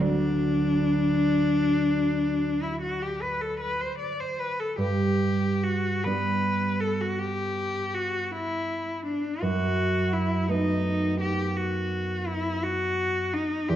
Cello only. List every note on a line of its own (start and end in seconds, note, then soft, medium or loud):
0.02 2.65 D4 loud
2.63 2.81 E4 medium
2.82 3.04 F#4 medium
3.02 3.23 G4 medium
3.22 3.43 B4 medium
3.41 3.60 A4 medium
3.60 3.82 B4 medium
3.81 3.98 C5 medium
3.99 4.22 D5 medium
4.20 4.41 C5 medium
4.39 4.61 B4 medium
4.60 4.79 A4 medium
4.80 5.65 G4 medium
5.63 6.06 F#4 medium
6.04 6.82 B4 medium
6.81 7.03 A4 medium
7.01 7.21 F#4 medium
7.19 7.96 G4 medium
7.95 8.33 F#4 medium
8.32 9.05 E4 medium
9.06 9.44 D4 medium
9.42 10.15 F#4 medium
10.13 10.51 E4 medium
10.50 11.20 D#4 medium
11.21 11.58 G4 medium
11.56 12.28 F#4 medium
12.27 12.64 E4 medium
12.63 13.35 F#4 medium
13.33 13.71 D#4 medium
13.69 13.76 G4 medium